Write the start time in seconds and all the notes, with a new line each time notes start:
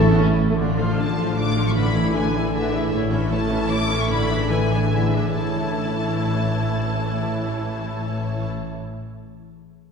Already playing: A1 A2 E3 A3 E4 A4 A5 C#6
0.00 C#5
0.10 B3
0.18 C#4 E4
0.39 C#4
0.49 A3
0.58 A1 A2 D3 D4 F4 D5
0.78 F3 A3 F4 A4 F5
0.97 D3 D4 F4 D5 A5
1.17 F3 F4 A4 F5
1.36 D3 D4 F4 A4 D5 D6
1.56 F3 D4 F4 A4 F5
1.67 C#6
1.75 A2 D3 D4 E4 B4 B5
1.94 E3 E4 G#4 D5
2.14 D3 D4 E4 B4 G#5
2.35 E3 E4 G#4 D5
2.53 D3 D4 E4 G#4 B4 E5
2.71 E3 D4 E4 G#4 D5
2.92 A1 A2 A3 E4 C#5
3.11 E3 C#4 A4 E5
3.30 A3 C#4 E4 C#5 A5
3.49 E3 C#4 E4 A4 E5
3.70 A3 E4 A4 C#5 D6
3.89 E3 C#4 A4 E5
4.01 C#6
4.10 A2 D3 E4 B4 D5 B5
4.30 E3 D4 G#4 E5
4.50 D3 D4 E4 B4 D5 G#5
4.71 E3 D4 E4 G#4 E5
4.91 D3 E4 G#4 B4 D5 E5
5.13 E3 D4 G#4 E5
5.34 A1 A2 E3 E4 A4 C#5 A5
5.41 A3
5.48 C#4
5.55 E4
5.62 A4
5.69 E5